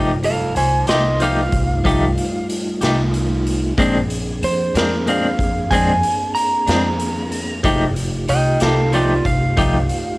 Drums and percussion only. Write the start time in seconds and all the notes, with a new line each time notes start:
0.23 closed hi-hat
0.56 closed hi-hat
0.87 snare, closed hi-hat
1.20 closed hi-hat
1.52 kick, closed hi-hat
1.85 kick, closed hi-hat
2.18 closed hi-hat
2.50 closed hi-hat
2.81 snare, closed hi-hat
3.14 closed hi-hat
3.47 closed hi-hat
3.78 kick, closed hi-hat
4.10 closed hi-hat
4.43 closed hi-hat
4.75 snare, closed hi-hat
5.07 closed hi-hat
5.39 kick, closed hi-hat
5.71 kick, closed hi-hat
6.03 closed hi-hat
6.35 closed hi-hat
6.67 snare, closed hi-hat
6.99 closed hi-hat
7.32 closed hi-hat
7.64 kick, closed hi-hat
7.96 closed hi-hat
8.28 closed hi-hat
8.60 snare, closed hi-hat
8.93 closed hi-hat
9.25 kick, closed hi-hat
9.57 kick, closed hi-hat
9.89 closed hi-hat